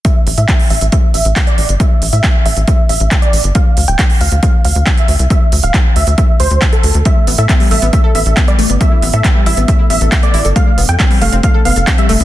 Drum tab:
HH |x-oxxooxx-oxxxox|x-oxx-oxx-oxxxox|x-oxxooxx-oxxxox|x-oxx-oxx-oxxxox|
CP |----x-------x---|----x-------x---|----x-------x---|----x-------x---|
BD |o---o---o---o---|o---o---o---o---|o---o---o---o---|o---o---o---o---|

HH |x-oxxooxx-oxxxox|x-oxx-oxx-oxxxox|x-oxxooxx-oxxxox|
CP |----x-------x---|----x-------x---|----x-------x---|
BD |o---o---o---o---|o---o---o---o---|o---o---o---o---|